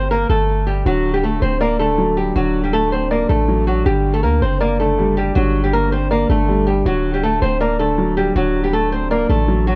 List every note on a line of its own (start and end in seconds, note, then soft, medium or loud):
0.00 0.26 G1 loud
0.11 0.28 A#3 medium
0.11 0.28 A#4 medium
0.29 0.83 G1 loud
0.29 0.65 A3 medium
0.29 0.65 A4 medium
0.67 0.84 G3 medium
0.67 0.84 G4 medium
0.85 1.40 D1 loud
0.85 1.78 D3 medium
0.85 1.13 F#3 medium
0.85 1.12 F#4 loud
1.14 1.23 G3 medium
1.14 1.22 G4 medium
1.23 1.41 A3 medium
1.23 1.40 A4 medium
1.42 2.32 D1 loud
1.42 1.59 C4 medium
1.42 1.59 C5 medium
1.61 1.78 A#3 medium
1.61 1.78 A#4 medium
1.61 2.55 D5 medium
1.79 2.34 D3 medium
1.79 2.15 A3 medium
1.79 2.15 A4 medium
1.98 2.92 F#3 medium
2.17 2.34 G3 medium
2.17 2.34 G4 medium
2.36 3.26 D1 loud
2.36 3.28 D3 medium
2.36 2.62 F#3 medium
2.36 2.62 F#4 loud
2.64 2.73 G3 medium
2.64 2.72 G4 medium
2.73 2.91 A3 medium
2.73 2.90 A4 medium
2.92 3.09 C4 medium
2.92 3.09 C5 medium
3.11 3.28 A#3 medium
3.11 3.28 A#4 medium
3.11 3.86 D5 medium
3.29 3.83 A1 loud
3.29 3.84 D3 medium
3.29 3.65 A3 medium
3.29 3.65 A4 medium
3.48 3.86 F#3 medium
3.67 3.84 F#3 medium
3.67 3.84 F#4 medium
3.85 4.25 G1 loud
3.85 4.78 D3 medium
3.85 4.13 G3 medium
3.85 4.12 G4 loud
4.14 4.23 A3 medium
4.14 4.22 A4 medium
4.23 4.41 D2 loud
4.23 4.40 A#3 medium
4.23 4.40 A#4 medium
4.42 5.32 F#1 loud
4.42 4.59 C4 medium
4.42 4.59 C5 medium
4.60 4.78 A#3 medium
4.60 4.78 A#4 medium
4.60 5.55 D5 medium
4.80 5.34 D3 medium
4.80 5.15 A3 medium
4.80 5.15 A4 medium
4.99 5.92 G3 medium
5.17 5.34 G3 medium
5.17 5.34 G4 medium
5.35 6.26 G1 loud
5.35 6.28 D3 medium
5.35 5.62 F#3 medium
5.35 5.62 F#4 loud
5.64 5.73 G3 medium
5.64 5.72 G4 medium
5.73 5.91 A#3 medium
5.73 5.90 A#4 medium
5.92 6.10 C4 medium
5.92 6.09 C5 medium
6.11 6.28 A#3 medium
6.11 6.28 A#4 medium
6.11 6.86 D5 medium
6.29 6.83 G1 loud
6.29 6.84 D3 medium
6.29 6.65 A3 medium
6.29 6.65 A4 medium
6.48 6.86 G3 medium
6.67 6.84 G3 medium
6.67 6.84 G4 medium
6.86 7.40 D1 loud
6.86 7.78 D3 medium
6.86 7.13 F#3 medium
6.86 7.12 F#4 loud
7.14 7.23 G3 medium
7.14 7.22 G4 medium
7.23 7.41 A3 medium
7.23 7.40 A4 medium
7.42 8.32 D1 loud
7.42 7.59 C4 medium
7.42 7.59 C5 medium
7.61 7.78 A#3 medium
7.61 7.78 A#4 medium
7.61 8.55 D5 medium
7.79 8.34 D3 medium
7.79 8.15 A3 medium
7.79 8.15 A4 medium
7.98 8.92 F#3 medium
8.17 8.34 G3 medium
8.17 8.34 G4 medium
8.36 9.26 D1 loud
8.36 9.28 D3 medium
8.36 8.63 F#3 medium
8.36 8.62 F#4 loud
8.64 8.73 G3 medium
8.64 8.72 G4 medium
8.73 8.91 A3 medium
8.73 8.90 A4 medium
8.92 9.10 C4 medium
8.92 9.09 C5 medium
9.11 9.28 A#3 medium
9.11 9.28 A#4 medium
9.11 9.75 D5 medium
9.29 9.75 A1 loud
9.29 9.75 D3 medium
9.29 9.65 A3 medium
9.29 9.65 A4 medium
9.48 9.75 F#3 medium
9.67 9.75 F#3 medium
9.67 9.75 F#4 medium